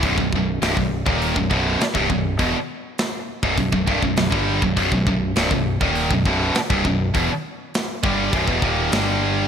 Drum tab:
HH |o---o---o---o---|o---o---o---o---|o---o---o---o---|o---o---o---o---|
SD |----o-------o---|----o-------o---|----o-------o---|----o-------o---|
BD |ooo--o-o-oo--oo-|o------ooooo-o-o|ooo--o-o-oo--oo-|o-----o-ooo-----|